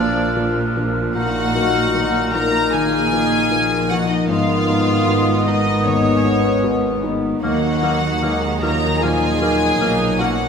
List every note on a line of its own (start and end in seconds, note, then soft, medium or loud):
0.00 4.30 A#1 medium
0.00 1.14 A#2 medium
0.00 4.30 A#2 medium
0.00 0.36 F3 medium
0.00 1.16 F3 medium
0.00 0.26 F#3 medium
0.00 0.99 A#3 medium
0.00 1.11 A#3 medium
0.00 2.72 A#3 medium
0.00 0.37 D4 medium
0.00 0.75 D4 medium
0.00 0.76 D4 medium
0.00 1.11 D4 medium
0.00 0.99 F4 medium
0.00 1.18 F4 soft
0.00 1.18 F4 medium
0.00 0.37 A#4 medium
0.00 1.47 A#4 medium
0.00 0.75 D5 medium
0.00 1.12 F6 medium
0.36 0.72 F3 soft
0.36 0.72 D4 soft
0.36 0.72 A#4 medium
0.76 1.11 F3 soft
0.76 1.19 D4 medium
0.76 1.12 D4 soft
0.76 1.12 A#4 medium
1.14 1.53 A#2 medium
1.14 4.33 A#2 medium
1.14 7.43 D#3 medium
1.14 4.26 A#3 medium
1.14 3.98 D#4 medium
1.14 7.39 D#4 medium
1.14 2.30 F#4 medium
1.14 2.30 F#5 loud
1.14 3.98 F6 medium
1.55 1.90 F#3 soft
1.55 2.33 D#4 medium
1.55 1.91 D#4 medium
1.55 1.91 A#4 medium
1.94 4.33 D#3 soft
1.94 2.30 F#3 soft
1.94 2.30 D#4 soft
1.94 2.30 A#4 medium
2.33 2.69 F3 medium
2.33 3.12 D#4 medium
2.33 2.70 D#4 medium
2.33 2.73 A#4 medium
2.33 2.70 A#4 medium
2.33 2.72 A#5 loud
2.73 3.11 D#3 medium
2.73 4.33 A#3 medium
2.73 3.90 G#4 medium
2.73 3.90 G#5 loud
3.12 3.47 F3 medium
3.12 3.90 D#4 medium
3.12 3.48 D#4 medium
3.12 3.48 A#4 medium
3.50 3.86 F3 soft
3.50 4.33 F3 medium
3.50 3.86 D#4 medium
3.50 3.86 A#4 medium
3.89 4.26 F3 soft
3.89 4.68 D#4 medium
3.89 4.26 D#4 soft
3.89 4.09 F#4 medium
3.89 4.26 A#4 medium
3.89 4.10 F#5 medium
4.09 4.30 D#4 medium
4.09 4.29 D#5 medium
4.29 7.39 G#1 medium
4.29 4.67 G#2 medium
4.29 7.39 G#2 medium
4.29 7.46 G#2 medium
4.29 7.39 B3 medium
4.29 7.43 B3 medium
4.29 7.40 B3 medium
4.29 5.47 F4 medium
4.29 5.43 F5 loud
4.29 7.39 D#6 medium
4.69 5.04 G#3 soft
4.69 5.46 D#4 medium
4.69 5.04 D#4 medium
4.69 5.04 B4 medium
5.08 5.42 G#3 medium
5.08 6.63 G#3 medium
5.08 5.43 D#4 medium
5.08 5.43 B4 medium
5.45 5.81 G#3 medium
5.45 5.85 D#4 medium
5.45 5.81 D#4 medium
5.45 6.23 D#4 medium
5.45 5.82 B4 medium
5.45 5.84 D#5 loud
5.85 6.23 D#2 medium
5.85 7.41 D#3 medium
5.85 7.04 C#4 medium
5.85 7.04 C#5 loud
6.24 6.60 G#3 soft
6.24 7.02 D#4 medium
6.24 6.60 D#4 soft
6.24 6.60 B4 medium
6.63 6.99 G#3 soft
6.63 7.46 G#3 medium
6.63 6.99 D#4 medium
6.63 7.00 B4 medium
7.03 7.39 G#3 medium
7.03 8.21 D#4 medium
7.03 7.39 D#4 soft
7.03 7.39 B4 medium
7.42 9.77 D#2 medium
7.42 7.82 D#2 medium
7.42 10.48 D#3 medium
7.42 9.77 D#3 medium
7.42 8.19 F#3 medium
7.42 7.58 A#3 medium
7.42 7.80 A#3 medium
7.42 10.48 A#3 medium
7.42 10.42 D#4 medium
7.42 8.58 F#4 medium
7.42 8.58 F#5 medium
7.42 7.52 F6 medium
7.82 8.18 F#3 medium
7.82 7.98 A#3 medium
7.82 8.18 D#4 medium
7.82 8.22 D#4 medium
7.82 8.19 A#4 medium
7.82 8.61 A#4 medium
7.82 7.92 F6 medium
8.22 8.59 F#3 medium
8.22 8.62 G#3 medium
8.22 8.38 A#3 medium
8.22 9.80 D#4 medium
8.22 9.00 D#4 medium
8.22 8.59 D#4 medium
8.22 8.59 A#4 medium
8.22 8.31 F6 medium
8.61 8.98 F3 medium
8.61 9.02 F#3 medium
8.61 8.78 A#3 medium
8.61 8.98 D#4 medium
8.61 9.01 A#4 medium
8.61 9.40 A#4 medium
8.61 8.98 A#4 medium
8.61 9.02 A#5 loud
8.61 8.71 F6 medium
9.00 9.40 A#2 medium
9.00 9.41 F3 medium
9.00 10.48 F#3 medium
9.00 9.18 A#3 medium
9.00 9.81 F4 medium
9.00 10.20 G#4 medium
9.00 10.20 G#5 loud
9.00 9.11 F6 medium
9.41 9.77 F3 medium
9.41 10.48 F#3 medium
9.41 9.57 A#3 medium
9.41 9.77 D#4 medium
9.41 10.19 A#4 medium
9.41 9.78 A#4 medium
9.41 9.50 F6 medium
9.80 10.48 B1 medium
9.80 10.48 B2 medium
9.80 10.17 F3 medium
9.80 9.97 A#3 medium
9.80 10.20 D#4 medium
9.80 10.48 D#4 medium
9.80 10.17 D#4 medium
9.80 10.17 A#4 medium
9.80 9.89 F6 medium
10.19 10.48 F#3 soft
10.19 10.36 A#3 medium
10.19 10.48 C#4 medium
10.19 10.48 D#4 medium
10.19 10.48 F#4 medium
10.19 10.48 A#4 medium
10.19 10.48 F#5 medium
10.19 10.29 F6 medium